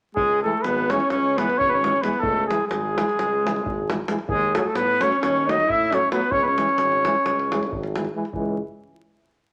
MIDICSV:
0, 0, Header, 1, 7, 480
1, 0, Start_track
1, 0, Key_signature, 4, "minor"
1, 0, Tempo, 454201
1, 178, Time_signature, 9, 3, 24, 8
1, 10067, End_track
2, 0, Start_track
2, 0, Title_t, "Trumpet"
2, 0, Program_c, 0, 56
2, 165, Note_on_c, 0, 68, 88
2, 436, Note_off_c, 0, 68, 0
2, 448, Note_on_c, 0, 69, 76
2, 654, Note_on_c, 0, 71, 78
2, 669, Note_off_c, 0, 69, 0
2, 956, Note_on_c, 0, 73, 88
2, 972, Note_off_c, 0, 71, 0
2, 1169, Note_off_c, 0, 73, 0
2, 1176, Note_on_c, 0, 73, 78
2, 1458, Note_on_c, 0, 71, 88
2, 1473, Note_off_c, 0, 73, 0
2, 1666, Note_on_c, 0, 73, 97
2, 1682, Note_off_c, 0, 71, 0
2, 1786, Note_on_c, 0, 71, 88
2, 1802, Note_off_c, 0, 73, 0
2, 1817, Note_on_c, 0, 73, 86
2, 1833, Note_off_c, 0, 71, 0
2, 2128, Note_on_c, 0, 71, 81
2, 2144, Note_off_c, 0, 73, 0
2, 2321, Note_on_c, 0, 69, 96
2, 2337, Note_off_c, 0, 71, 0
2, 2600, Note_off_c, 0, 69, 0
2, 2606, Note_on_c, 0, 68, 73
2, 2819, Note_off_c, 0, 68, 0
2, 2826, Note_on_c, 0, 68, 73
2, 4254, Note_off_c, 0, 68, 0
2, 4523, Note_on_c, 0, 68, 89
2, 4815, Note_on_c, 0, 69, 76
2, 4831, Note_off_c, 0, 68, 0
2, 4868, Note_on_c, 0, 68, 55
2, 4884, Note_off_c, 0, 69, 0
2, 4931, Note_on_c, 0, 69, 67
2, 4947, Note_off_c, 0, 68, 0
2, 5026, Note_on_c, 0, 71, 87
2, 5042, Note_off_c, 0, 69, 0
2, 5307, Note_on_c, 0, 73, 76
2, 5323, Note_off_c, 0, 71, 0
2, 5512, Note_off_c, 0, 73, 0
2, 5519, Note_on_c, 0, 73, 80
2, 5818, Note_on_c, 0, 75, 95
2, 5834, Note_off_c, 0, 73, 0
2, 6032, Note_on_c, 0, 76, 86
2, 6048, Note_off_c, 0, 75, 0
2, 6279, Note_on_c, 0, 73, 90
2, 6295, Note_off_c, 0, 76, 0
2, 6461, Note_off_c, 0, 73, 0
2, 6468, Note_on_c, 0, 71, 74
2, 6671, Note_on_c, 0, 73, 88
2, 6687, Note_off_c, 0, 71, 0
2, 6786, Note_on_c, 0, 71, 76
2, 6802, Note_off_c, 0, 73, 0
2, 6820, Note_on_c, 0, 73, 86
2, 6836, Note_off_c, 0, 71, 0
2, 8394, Note_off_c, 0, 73, 0
2, 10067, End_track
3, 0, Start_track
3, 0, Title_t, "Alto saxophone"
3, 0, Program_c, 1, 65
3, 155, Note_on_c, 1, 56, 78
3, 430, Note_off_c, 1, 56, 0
3, 452, Note_on_c, 1, 57, 69
3, 683, Note_on_c, 1, 59, 79
3, 699, Note_off_c, 1, 57, 0
3, 961, Note_on_c, 1, 61, 78
3, 977, Note_off_c, 1, 59, 0
3, 1164, Note_off_c, 1, 61, 0
3, 1171, Note_on_c, 1, 61, 85
3, 1442, Note_on_c, 1, 59, 74
3, 1458, Note_off_c, 1, 61, 0
3, 1674, Note_on_c, 1, 61, 74
3, 1690, Note_off_c, 1, 59, 0
3, 1785, Note_on_c, 1, 59, 59
3, 1801, Note_off_c, 1, 61, 0
3, 1829, Note_on_c, 1, 61, 69
3, 1844, Note_off_c, 1, 59, 0
3, 2134, Note_on_c, 1, 59, 74
3, 2150, Note_off_c, 1, 61, 0
3, 2357, Note_on_c, 1, 57, 84
3, 2373, Note_off_c, 1, 59, 0
3, 2631, Note_off_c, 1, 57, 0
3, 2637, Note_on_c, 1, 56, 56
3, 2841, Note_off_c, 1, 56, 0
3, 2857, Note_on_c, 1, 56, 69
3, 4270, Note_off_c, 1, 56, 0
3, 4538, Note_on_c, 1, 56, 85
3, 4802, Note_on_c, 1, 57, 54
3, 4818, Note_off_c, 1, 56, 0
3, 4874, Note_on_c, 1, 56, 52
3, 4890, Note_off_c, 1, 57, 0
3, 4921, Note_on_c, 1, 57, 71
3, 4937, Note_off_c, 1, 56, 0
3, 5020, Note_on_c, 1, 59, 69
3, 5036, Note_off_c, 1, 57, 0
3, 5293, Note_on_c, 1, 61, 74
3, 5309, Note_off_c, 1, 59, 0
3, 5472, Note_off_c, 1, 61, 0
3, 5479, Note_on_c, 1, 61, 85
3, 5775, Note_on_c, 1, 63, 67
3, 5791, Note_off_c, 1, 61, 0
3, 5991, Note_on_c, 1, 64, 78
3, 6007, Note_off_c, 1, 63, 0
3, 6243, Note_on_c, 1, 61, 61
3, 6258, Note_off_c, 1, 64, 0
3, 6456, Note_off_c, 1, 61, 0
3, 6461, Note_on_c, 1, 59, 74
3, 6664, Note_on_c, 1, 61, 82
3, 6680, Note_off_c, 1, 59, 0
3, 6789, Note_on_c, 1, 59, 61
3, 6805, Note_off_c, 1, 61, 0
3, 6839, Note_on_c, 1, 61, 65
3, 6855, Note_off_c, 1, 59, 0
3, 8404, Note_off_c, 1, 61, 0
3, 10067, End_track
4, 0, Start_track
4, 0, Title_t, "Euphonium"
4, 0, Program_c, 2, 58
4, 462, Note_on_c, 2, 56, 40
4, 550, Note_off_c, 2, 56, 0
4, 953, Note_on_c, 2, 56, 53
4, 1043, Note_off_c, 2, 56, 0
4, 1450, Note_on_c, 2, 56, 57
4, 1541, Note_off_c, 2, 56, 0
4, 1920, Note_on_c, 2, 56, 55
4, 2007, Note_off_c, 2, 56, 0
4, 2132, Note_on_c, 2, 56, 69
4, 2219, Note_off_c, 2, 56, 0
4, 2635, Note_on_c, 2, 56, 57
4, 2723, Note_off_c, 2, 56, 0
4, 3131, Note_on_c, 2, 56, 54
4, 3220, Note_off_c, 2, 56, 0
4, 3640, Note_on_c, 2, 56, 64
4, 3726, Note_off_c, 2, 56, 0
4, 4099, Note_on_c, 2, 56, 47
4, 4183, Note_off_c, 2, 56, 0
4, 4310, Note_on_c, 2, 56, 63
4, 4393, Note_off_c, 2, 56, 0
4, 4790, Note_on_c, 2, 57, 58
4, 4879, Note_off_c, 2, 57, 0
4, 5297, Note_on_c, 2, 57, 61
4, 5383, Note_off_c, 2, 57, 0
4, 5783, Note_on_c, 2, 57, 52
4, 5871, Note_off_c, 2, 57, 0
4, 6270, Note_on_c, 2, 57, 61
4, 6350, Note_off_c, 2, 57, 0
4, 6465, Note_on_c, 2, 57, 67
4, 6547, Note_off_c, 2, 57, 0
4, 6950, Note_on_c, 2, 56, 49
4, 7035, Note_off_c, 2, 56, 0
4, 7455, Note_on_c, 2, 56, 51
4, 7538, Note_off_c, 2, 56, 0
4, 7955, Note_on_c, 2, 56, 57
4, 8038, Note_off_c, 2, 56, 0
4, 8411, Note_on_c, 2, 56, 49
4, 8492, Note_off_c, 2, 56, 0
4, 8614, Note_on_c, 2, 56, 46
4, 8696, Note_off_c, 2, 56, 0
4, 8811, Note_on_c, 2, 56, 46
4, 9074, Note_off_c, 2, 56, 0
4, 10067, End_track
5, 0, Start_track
5, 0, Title_t, "Trombone"
5, 0, Program_c, 3, 57
5, 477, Note_on_c, 3, 52, 56
5, 561, Note_off_c, 3, 52, 0
5, 977, Note_on_c, 3, 52, 57
5, 1062, Note_off_c, 3, 52, 0
5, 1466, Note_on_c, 3, 52, 55
5, 1554, Note_off_c, 3, 52, 0
5, 1948, Note_on_c, 3, 52, 48
5, 2030, Note_off_c, 3, 52, 0
5, 2165, Note_on_c, 3, 52, 57
5, 2245, Note_off_c, 3, 52, 0
5, 2645, Note_on_c, 3, 52, 56
5, 2731, Note_off_c, 3, 52, 0
5, 3131, Note_on_c, 3, 52, 55
5, 3220, Note_off_c, 3, 52, 0
5, 3648, Note_on_c, 3, 52, 52
5, 3732, Note_off_c, 3, 52, 0
5, 4113, Note_on_c, 3, 52, 52
5, 4195, Note_off_c, 3, 52, 0
5, 4328, Note_on_c, 3, 52, 62
5, 4408, Note_off_c, 3, 52, 0
5, 4827, Note_on_c, 3, 54, 63
5, 4908, Note_off_c, 3, 54, 0
5, 5316, Note_on_c, 3, 54, 55
5, 5398, Note_off_c, 3, 54, 0
5, 5811, Note_on_c, 3, 54, 52
5, 5893, Note_off_c, 3, 54, 0
5, 6261, Note_on_c, 3, 54, 54
5, 6342, Note_off_c, 3, 54, 0
5, 6474, Note_on_c, 3, 54, 65
5, 6554, Note_off_c, 3, 54, 0
5, 6952, Note_on_c, 3, 52, 59
5, 7037, Note_off_c, 3, 52, 0
5, 7456, Note_on_c, 3, 52, 58
5, 7539, Note_off_c, 3, 52, 0
5, 7949, Note_on_c, 3, 52, 43
5, 8033, Note_off_c, 3, 52, 0
5, 8416, Note_on_c, 3, 52, 44
5, 8496, Note_off_c, 3, 52, 0
5, 8614, Note_on_c, 3, 52, 56
5, 8696, Note_off_c, 3, 52, 0
5, 8812, Note_on_c, 3, 52, 46
5, 9075, Note_off_c, 3, 52, 0
5, 10067, End_track
6, 0, Start_track
6, 0, Title_t, "Tuba"
6, 0, Program_c, 4, 58
6, 182, Note_on_c, 4, 37, 80
6, 458, Note_off_c, 4, 37, 0
6, 670, Note_on_c, 4, 32, 88
6, 950, Note_off_c, 4, 32, 0
6, 1183, Note_on_c, 4, 37, 75
6, 1678, Note_on_c, 4, 32, 82
6, 1694, Note_off_c, 4, 37, 0
6, 2049, Note_off_c, 4, 32, 0
6, 2356, Note_on_c, 4, 37, 92
6, 2632, Note_off_c, 4, 37, 0
6, 2861, Note_on_c, 4, 32, 74
6, 3135, Note_off_c, 4, 32, 0
6, 3350, Note_on_c, 4, 37, 74
6, 3871, Note_on_c, 4, 32, 78
6, 3886, Note_off_c, 4, 37, 0
6, 4232, Note_off_c, 4, 32, 0
6, 4522, Note_on_c, 4, 39, 88
6, 4794, Note_off_c, 4, 39, 0
6, 5022, Note_on_c, 4, 45, 83
6, 5293, Note_off_c, 4, 45, 0
6, 5521, Note_on_c, 4, 39, 85
6, 6008, Note_on_c, 4, 45, 88
6, 6023, Note_off_c, 4, 39, 0
6, 6371, Note_off_c, 4, 45, 0
6, 6662, Note_on_c, 4, 37, 85
6, 6936, Note_off_c, 4, 37, 0
6, 7166, Note_on_c, 4, 32, 75
6, 7437, Note_off_c, 4, 32, 0
6, 7663, Note_on_c, 4, 37, 77
6, 8155, Note_on_c, 4, 32, 87
6, 8171, Note_off_c, 4, 37, 0
6, 8519, Note_off_c, 4, 32, 0
6, 8819, Note_on_c, 4, 37, 80
6, 9078, Note_off_c, 4, 37, 0
6, 10067, End_track
7, 0, Start_track
7, 0, Title_t, "Davul"
7, 175, Note_on_c, 9, 43, 78
7, 281, Note_off_c, 9, 43, 0
7, 680, Note_on_c, 9, 37, 56
7, 786, Note_off_c, 9, 37, 0
7, 950, Note_on_c, 9, 37, 56
7, 1055, Note_off_c, 9, 37, 0
7, 1059, Note_on_c, 9, 37, 23
7, 1165, Note_off_c, 9, 37, 0
7, 1166, Note_on_c, 9, 37, 50
7, 1271, Note_off_c, 9, 37, 0
7, 1459, Note_on_c, 9, 37, 54
7, 1565, Note_off_c, 9, 37, 0
7, 1580, Note_on_c, 9, 37, 24
7, 1685, Note_off_c, 9, 37, 0
7, 1697, Note_on_c, 9, 43, 70
7, 1802, Note_off_c, 9, 43, 0
7, 1945, Note_on_c, 9, 37, 53
7, 2051, Note_off_c, 9, 37, 0
7, 2150, Note_on_c, 9, 37, 55
7, 2254, Note_off_c, 9, 37, 0
7, 2254, Note_on_c, 9, 37, 17
7, 2358, Note_on_c, 9, 43, 95
7, 2359, Note_off_c, 9, 37, 0
7, 2464, Note_off_c, 9, 43, 0
7, 2648, Note_on_c, 9, 37, 57
7, 2754, Note_off_c, 9, 37, 0
7, 2862, Note_on_c, 9, 37, 53
7, 2968, Note_off_c, 9, 37, 0
7, 3147, Note_on_c, 9, 37, 62
7, 3253, Note_off_c, 9, 37, 0
7, 3269, Note_on_c, 9, 37, 23
7, 3373, Note_off_c, 9, 37, 0
7, 3373, Note_on_c, 9, 37, 56
7, 3478, Note_off_c, 9, 37, 0
7, 3662, Note_on_c, 9, 37, 62
7, 3765, Note_off_c, 9, 37, 0
7, 3765, Note_on_c, 9, 37, 23
7, 3868, Note_on_c, 9, 43, 80
7, 3871, Note_off_c, 9, 37, 0
7, 3974, Note_off_c, 9, 43, 0
7, 4117, Note_on_c, 9, 37, 60
7, 4223, Note_off_c, 9, 37, 0
7, 4314, Note_on_c, 9, 37, 61
7, 4420, Note_off_c, 9, 37, 0
7, 4424, Note_on_c, 9, 37, 20
7, 4530, Note_off_c, 9, 37, 0
7, 4530, Note_on_c, 9, 43, 91
7, 4636, Note_off_c, 9, 43, 0
7, 4808, Note_on_c, 9, 37, 69
7, 4913, Note_off_c, 9, 37, 0
7, 5025, Note_on_c, 9, 37, 63
7, 5131, Note_off_c, 9, 37, 0
7, 5292, Note_on_c, 9, 37, 65
7, 5398, Note_off_c, 9, 37, 0
7, 5414, Note_on_c, 9, 37, 25
7, 5520, Note_off_c, 9, 37, 0
7, 5526, Note_on_c, 9, 37, 60
7, 5632, Note_off_c, 9, 37, 0
7, 5805, Note_on_c, 9, 37, 56
7, 5911, Note_off_c, 9, 37, 0
7, 5919, Note_on_c, 9, 37, 23
7, 6019, Note_on_c, 9, 43, 70
7, 6024, Note_off_c, 9, 37, 0
7, 6124, Note_off_c, 9, 43, 0
7, 6261, Note_on_c, 9, 37, 53
7, 6367, Note_off_c, 9, 37, 0
7, 6467, Note_on_c, 9, 37, 58
7, 6567, Note_off_c, 9, 37, 0
7, 6567, Note_on_c, 9, 37, 17
7, 6673, Note_off_c, 9, 37, 0
7, 6674, Note_on_c, 9, 43, 80
7, 6779, Note_off_c, 9, 43, 0
7, 6813, Note_on_c, 9, 37, 20
7, 6918, Note_off_c, 9, 37, 0
7, 6952, Note_on_c, 9, 37, 56
7, 7058, Note_off_c, 9, 37, 0
7, 7072, Note_on_c, 9, 37, 21
7, 7166, Note_off_c, 9, 37, 0
7, 7166, Note_on_c, 9, 37, 54
7, 7271, Note_off_c, 9, 37, 0
7, 7311, Note_on_c, 9, 37, 23
7, 7417, Note_off_c, 9, 37, 0
7, 7448, Note_on_c, 9, 37, 59
7, 7553, Note_off_c, 9, 37, 0
7, 7560, Note_on_c, 9, 37, 20
7, 7666, Note_off_c, 9, 37, 0
7, 7669, Note_on_c, 9, 37, 55
7, 7775, Note_off_c, 9, 37, 0
7, 7814, Note_on_c, 9, 37, 26
7, 7920, Note_off_c, 9, 37, 0
7, 7945, Note_on_c, 9, 37, 56
7, 8051, Note_off_c, 9, 37, 0
7, 8061, Note_on_c, 9, 37, 23
7, 8161, Note_on_c, 9, 43, 69
7, 8166, Note_off_c, 9, 37, 0
7, 8267, Note_off_c, 9, 43, 0
7, 8279, Note_on_c, 9, 37, 23
7, 8385, Note_off_c, 9, 37, 0
7, 8408, Note_on_c, 9, 37, 53
7, 8503, Note_off_c, 9, 37, 0
7, 8503, Note_on_c, 9, 37, 22
7, 8609, Note_off_c, 9, 37, 0
7, 8720, Note_on_c, 9, 37, 18
7, 8807, Note_on_c, 9, 43, 70
7, 8826, Note_off_c, 9, 37, 0
7, 8912, Note_off_c, 9, 43, 0
7, 10067, End_track
0, 0, End_of_file